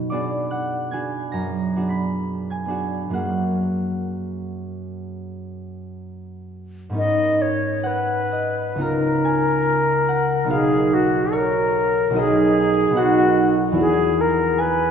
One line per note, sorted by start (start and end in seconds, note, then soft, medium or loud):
0.00 3.18 B2 medium
0.00 0.11 B3 soft
0.00 0.11 F#4 soft
0.00 3.19 B4 soft
0.00 0.51 F#5 medium
0.00 0.49 F#6 medium
0.10 0.91 B3 soft
0.10 0.92 D4 soft
0.10 0.92 F#4 soft
0.10 0.93 G#4 soft
0.10 3.18 D5 medium
0.10 3.17 D6 medium
0.51 3.14 F#5 medium
0.51 3.12 F#6 medium
0.91 1.75 B3 soft
0.91 1.75 D4 soft
0.91 1.76 F#4 soft
0.91 1.76 G#4 soft
0.91 2.50 G#5 soft
0.91 2.49 G#6 medium
1.32 3.08 F#2 soft
1.32 5.23 A#5 medium
1.32 2.32 A#6 medium
1.76 2.65 B3 soft
1.76 2.67 D4 soft
1.76 2.67 F#4 soft
1.76 2.67 G#4 soft
1.89 3.19 B5 soft
1.89 3.18 B6 medium
2.50 6.41 G#5 soft
2.50 6.40 G#6 medium
2.65 3.19 B3 soft
2.65 3.19 D4 soft
2.65 3.12 G#4 soft
2.70 3.12 F#4 soft
3.10 6.98 F#2 soft
3.10 7.01 A#3 soft
3.10 6.91 C#4 soft
3.10 7.03 F#4 soft
3.10 7.04 F#6 medium
3.14 7.04 G#4 soft
3.14 7.05 F#5 soft
6.89 8.82 G#2 soft
6.89 8.75 B3 soft
6.89 10.53 C#4 soft
6.94 8.77 D#4 soft
6.94 8.80 A#4 soft
6.94 7.43 D#5 medium
7.41 7.88 C#5 soft
7.83 8.84 B4 soft
7.83 8.85 F#5 medium
8.32 12.15 D#5 medium
8.75 10.52 C#2 soft
8.75 10.44 B3 soft
8.75 10.46 D#4 soft
8.79 12.69 F4 soft
8.79 10.49 A#4 soft
8.79 10.51 A#4 medium
8.79 12.71 A#5 medium
9.25 10.54 G#5 medium
10.08 10.80 F#5 medium
10.44 12.09 B1 soft
10.44 12.10 B3 soft
10.44 12.11 D#4 soft
10.49 12.13 F#4 soft
10.49 10.95 G#4 medium
10.49 12.14 A#4 soft
10.49 13.82 F5 medium
10.94 11.35 F#4 medium
11.33 12.20 A#4 medium
11.33 12.73 C#5 medium
12.10 12.89 B1 medium
12.10 12.91 B3 soft
12.10 12.92 D#4 soft
12.14 12.94 F#4 soft
12.14 13.00 G#4 medium
12.14 12.95 A#4 soft
12.14 13.83 D#5 medium
12.90 13.79 B1 medium
12.90 13.72 B3 soft
12.90 13.81 D#4 soft
12.95 13.75 F#4 soft
12.95 13.53 F#4 medium
12.95 13.82 A#4 soft
12.95 14.91 F#5 medium
13.72 14.91 E2 medium
13.72 14.91 B3 soft
13.72 14.91 E4 soft
13.76 14.91 F#4 soft
13.76 14.91 G#4 soft
13.76 14.22 G#4 medium
14.21 14.62 A#4 medium
14.58 14.91 B4 medium
14.58 14.91 G#5 medium